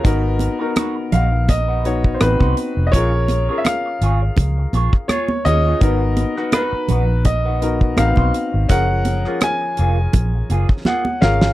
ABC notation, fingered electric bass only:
X:1
M:4/4
L:1/16
Q:"Swing 16ths" 1/4=83
K:G#dor
V:1 name="Fingered electric bass" clef=bass
G,,,3 z3 A,,,6 =A,,, =C,, z E,,, | A,,,4 z2 G,,,2 C,,2 A,,, z3 D,,2 | G,,,3 z3 A,,,6 =A,,, B,,, z G,,, | F,,,4 z2 E,,,2 A,,,2 F,,, z3 G,,,2 |]